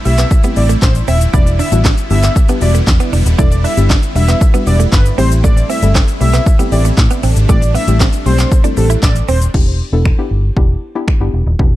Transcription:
Already playing: C3 G3 A3 E4
0.05 B1 G3 A3 C4 E4 G4 E5, muted clean electric guitar stroke, open hi-hat, shaker
0.18 B3, clap, closed hi-hat, shaker
0.31 kick, shaker
0.44 G3 A3 B3 C4 E4 G4, closed hi-hat, shaker
0.56 A1 G3 A3 C4 E4 G4 D5, muted clean electric guitar stroke, open hi-hat, shaker
0.69 A3, closed hi-hat, shaker
0.82 A1 C5, kick, snare, clap, shaker
0.95 closed hi-hat, shaker
1.08 D#1 C4 E5, open hi-hat, shaker
1.21 closed hi-hat, shaker
1.33 E1 D3 G3 B3 D4 E4 G4 D5, kick, shaker
1.46 muted clean electric guitar stroke, closed hi-hat, shaker
1.59 D4 E5, open hi-hat, shaker
1.72 A1 G3 B3 D4 E4 F#4, closed hi-hat, shaker
1.85 D4, kick, snare, clap, shaker
1.98 closed hi-hat, shaker
2.10 G1 G3 B3 D4 E4 G4 E5, muted clean electric guitar stroke, open hi-hat, shaker
2.23 B3, clap, closed hi-hat, shaker
2.36 kick, shaker
2.49 G3 B3 D4 E4 G4, closed hi-hat, shaker
2.61 E1 G3 B3 D4 E4 F#4 D5, muted clean electric guitar stroke, open hi-hat, shaker
2.75 A3, closed hi-hat, shaker
2.87 E2, muted clean electric guitar stroke, kick, snare, clap, shaker
3.00 B3, closed hi-hat, shaker
3.13 E1 D4, open hi-hat, shaker
3.26 D#1, closed hi-hat, shaker
3.38 E1 G3 B3 D4 E4 A4 D5, kick, shaker
3.52 muted clean electric guitar stroke, closed hi-hat, shaker
3.64 D4 E5, open hi-hat, shaker
3.77 G1 G3 B3 D4 E4 G4, closed hi-hat, shaker
3.90 D4, kick, snare, clap, shaker
4.03 closed hi-hat, shaker
4.15 E1 G3 B3 D4 E4 F#4 E5, muted clean electric guitar stroke, open hi-hat, shaker
4.28 B3, clap, closed hi-hat, shaker
4.41 kick, shaker
4.54 G3 B3 D4 E4 F#4, closed hi-hat, shaker
4.67 E1 G3 B3 D4 E4 G4 D5, muted clean electric guitar stroke, open hi-hat, shaker
4.80 A3, closed hi-hat, shaker
4.92 G1 B4, kick, snare, clap, shaker
5.06 closed hi-hat, shaker
5.18 A1 C3 G3 A3 C4 E4 G4 C5, open hi-hat, shaker
5.32 closed hi-hat, shaker
5.44 A3 D5, kick, shaker
5.57 muted clean electric guitar stroke, closed hi-hat, shaker
5.70 C4 E5, open hi-hat, shaker
5.82 G1 G3 A3 C4 E4 A4, closed hi-hat, shaker
5.95 C4, kick, snare, clap, shaker
6.08 closed hi-hat, shaker
6.21 B1 G3 A3 C4 E4 G4 E5, muted clean electric guitar stroke, open hi-hat, shaker
6.34 B3, clap, closed hi-hat, shaker
6.46 kick, shaker
6.59 G3 A3 B3 C4 E4 G4, closed hi-hat, shaker
6.72 A1 G3 A3 C4 E4 G4 D5, muted clean electric guitar stroke, open hi-hat, shaker
6.85 A3, closed hi-hat, shaker
6.98 A2, muted clean electric guitar stroke, kick, snare, clap, shaker
7.11 B3, closed hi-hat, shaker
7.23 A1 C4 D4, open hi-hat, shaker
7.36 G#1, closed hi-hat, shaker
7.49 A1 G3 A3 C4 E4 G4 D5, kick, shaker
7.62 muted clean electric guitar stroke, closed hi-hat, shaker
7.75 B3 E5, open hi-hat, shaker
7.87 A1 G3 A3 C4 E4 G4, closed hi-hat, shaker
8.00 C4, kick, snare, clap, shaker
8.13 closed hi-hat, shaker
8.26 B1 G3 A3 C4 E4 G4 C5, muted clean electric guitar stroke, open hi-hat, shaker
8.39 C4, clap, closed hi-hat, shaker
8.52 kick, shaker
8.64 G3 A3 C4 D4 E4 A4, closed hi-hat, shaker
8.77 A1 G3 A3 C4 E4 G4 A4, muted clean electric guitar stroke, open hi-hat, shaker
8.90 E4, closed hi-hat, shaker
9.03 A1 D5, kick, snare, clap, shaker
9.16 closed hi-hat, shaker
9.28 D#1 C4 C5, open hi-hat, shaker
9.42 closed hi-hat, shaker
9.54 E1 B3 D4 E4 G4, kick, crash
9.93 E1 B3 D4 E4 A4
10.05 finger snap, kick
10.18 B3 D4 E4 G4
10.31 G1
10.57 E1 B3 D4 E4 G4, kick
10.95 B3 D4 E4 G4
11.08 finger snap, kick
11.21 G1 B3 D4 E4 G4
11.34 E1
11.46 D#1
11.59 E1 B3 D4 E4 G4, kick

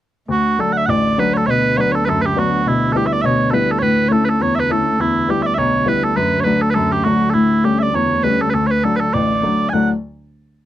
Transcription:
0.28 D2 F#4
0.59 F#3 A3 D4 A4
0.73 F#5
0.77 E5
0.86 A1 D5 F#5
1.18 F#3 A3 D4 B4
1.34 A4 C#5
1.47 B2 B4 C#5
1.77 F#3 B3 D4 B4 C#5
1.92 A4 C#5
2.05 F#2 A4 B4
2.22 G4 B4
2.36 F#3 B3 D4 F#4
2.66 B2 E4
2.92 G3 B3 E4 A4
2.97 G4
3.06 E5
3.13 D5
3.22 B2 C#5 E5
3.51 G3 B3 E4 A4 B4
3.71 A4
3.79 A2 B4 C#5
4.08 A3 C#4 E4 C#5
4.13 A4
4.25 B4
4.29 A4
4.40 E2 C#5
4.55 E5
4.60 B4
4.70 A3 C#4 E4 A4
4.99 D2 E2 E4
5.29 G3 B3 E4 G4
5.43 D5 E5
5.54 B1 C#5 E5
5.86 G3 B3 E4 B4
6.04 A4
6.16 F#2 B4
6.40 B4 C#5
6.45 F#3 A3 D4
6.62 A4
6.71 A4 B4
6.76 F#2
6.92 G4
7.04 F#3 A3 D4 F#4
7.30 E4 A4
7.35 A2
7.64 G3 A3 C#4 G4
7.79 D5 E5
7.94 E2 C#5
8.23 G3 A3 C#4 B4
8.41 A4
8.50 D2 A4 B4
8.67 B4 C#5
8.83 F#3 A3 D4 A4
8.96 A4 B4
9.14 A1 D5
9.43 F#3 A3 D4
9.69 D2 A2 F#5 G#5
9.74 F#3 D4 A4 D5

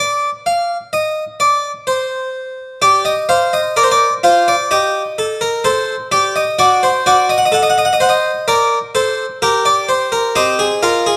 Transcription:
0.00 D5
0.46 F5
0.93 D#5
1.40 D5
1.87 C5
2.82 G4 D5
3.05 D#5
3.29 C5 F5
3.53 D#5
3.76 A#4 D5
3.83 C5
3.91 D5
4.23 F4 C5
4.48 D5
4.71 G4 D#5
5.18 A4
5.41 A#4
5.64 A4 C5
6.12 G4 D5
6.36 D#5
6.59 F#4 D5
6.83 C5
7.06 F#4 D5
7.29 D#5
7.38 F#5
7.46 D#5
7.52 A4 F#5
7.62 D#5
7.70 F#5
7.78 D#5
7.85 F#5
7.93 D#5
8.00 C5 F#5
8.09 D#5
8.48 A#4 D5
8.95 A4 C5
9.42 G4 A#4
9.65 D5
9.89 C5
10.12 A#4
10.36 C4 G4 D#5
10.59 G#4
10.83 F4 A#4
11.06 G#4

